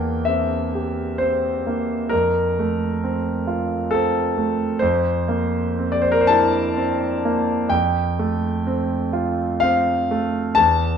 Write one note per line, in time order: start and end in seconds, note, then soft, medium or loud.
0.00 2.08 E2 soft
0.00 0.56 A#3 soft
0.00 0.26 G5 medium
0.25 1.02 C4 soft
0.25 1.19 E5 medium
0.75 1.48 G4 soft
1.18 1.94 C4 soft
1.18 2.11 C5 medium
1.67 2.12 A#3 soft
2.09 4.78 F2 soft
2.09 3.91 A#4 medium
2.59 3.30 A3 soft
3.04 3.75 C4 soft
3.47 4.19 F4 soft
3.91 4.65 C4 soft
3.91 4.81 A4 medium
4.38 4.83 A3 soft
4.79 7.67 F2 soft
4.79 5.90 C5 medium
5.28 6.09 A#3 soft
5.79 6.59 C4 soft
5.92 6.01 D5 medium
6.02 6.11 C5 medium
6.12 6.21 A#4 medium
6.21 6.30 C5 medium
6.27 7.06 E4 soft
6.27 7.71 A5 medium
6.77 7.53 C4 soft
7.25 7.72 A#3 soft
7.69 10.52 F2 soft
7.69 9.61 G5 medium
8.19 8.95 A3 soft
8.67 9.43 C4 soft
9.13 9.91 F4 soft
9.60 10.39 C4 soft
9.60 10.56 F5 medium
10.11 10.58 A3 soft
10.55 10.97 E2 soft
10.55 10.97 A5 loud